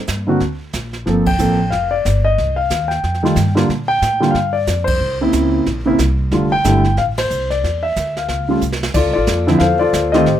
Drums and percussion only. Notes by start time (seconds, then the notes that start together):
0.08 kick, snare, hi-hat pedal
0.40 brush sweep, kick, snare
0.73 kick, snare, hi-hat pedal
0.93 snare
1.07 brush sweep, kick, snare
1.26 kick, ride
1.39 hi-hat pedal
1.72 brush sweep, kick, snare
2.05 kick, snare, hi-hat pedal
2.38 brush sweep, kick, snare
2.70 kick, snare, hi-hat pedal
2.91 snare
3.04 brush sweep, kick, snare
3.14 snare
3.25 snare
3.36 kick, snare, hi-hat pedal
3.57 snare
3.69 brush sweep, kick, snare
4.02 kick, snare, hi-hat pedal
4.23 snare
4.35 brush sweep, kick, snare
4.67 kick, snare, hi-hat pedal
4.87 kick, ride
5.01 brush sweep
5.33 kick, snare, hi-hat pedal
5.66 brush sweep, kick, snare
5.98 kick, snare, hi-hat pedal
6.31 brush sweep, kick, snare
6.64 kick, snare, hi-hat pedal
6.84 snare
6.97 brush sweep, kick, snare
7.17 snare, ride
7.30 hi-hat pedal
7.51 snare
7.64 brush sweep, kick, snare
7.96 kick, snare, hi-hat pedal
8.17 snare
8.28 brush sweep, kick, snare
8.61 hi-hat pedal
8.72 snare
8.83 snare
8.94 brush sweep, kick, snare, crash
9.27 kick, snare, hi-hat pedal
9.48 snare
9.60 brush sweep, kick, snare
9.93 kick, snare, hi-hat pedal
10.14 snare
10.26 brush sweep, kick, snare